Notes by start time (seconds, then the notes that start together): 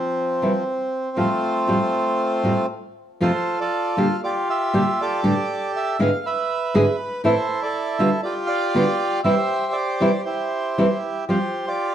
Already playing: F3 C4
0.42 C3 E3 G3 C4 E4
1.16 F2 A2 F3 G3 A3 C4 F4
1.67 F2 A2 F3 G3 C4 F4
2.44 F2 A2 F3 G3 C4 F4
3.20 F2 C3 F3 A3 C4 F4 A4 C5
3.60 F4 A4 D5
3.97 A#2 D3 G3 D4 G4 F5
4.24 F4 G4 D5
4.50 G4 E5
4.74 A#2 D3 G3 D4 G4
5.01 G4 A4 D5
5.23 G2 A2 D3 G3 D4 G4
5.76 E5
5.99 G#2 D3 G#3 B3 E4 G#4 F5
6.26 B4 E5
6.74 G#2 D3 G#3 B3 E4 G#4
7.24 A2 E3 A3 C4 E4 A4 C5
7.63 A4 D5
7.99 B2 D3 G3 B3 F4 E5
8.23 F4 G4 D5
8.47 D5 F5
8.75 B2 D3 G3 B3 F4
9.24 C3 E3 G3 C4 E4 G4 C5 E5
9.73 G4 D5
10.00 C3 E3 G3 C4 E4
10.25 E4 G4 C5
10.78 C3 E3 G3 C4 E4
11.28 F3 G3 C4 F4 G4 C5
11.67 F4 G4 D5